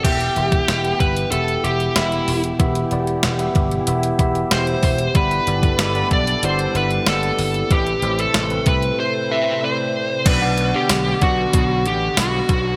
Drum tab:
CC |x---------------|----------------|----------------|----------------|
HH |xxxxxxxxxxxxxxox|xxxxxxxxxxxxxxox|xxxxxxxxxxxxxxox|xxxxxxxx--------|
TB |----------------|----------------|----------------|----------------|
SD |----o-------o---|----o-------o---|----o-------o---|----o-----------|
BD |o--o--o---------|o-----o---o---o-|o--o--o---------|o-----o---------|

CC |x---------------|
HH |x-x-x-x-x-x-x-x-|
TB |----x-------x---|
SD |----o-------o---|
BD |o-----o-o-----o-|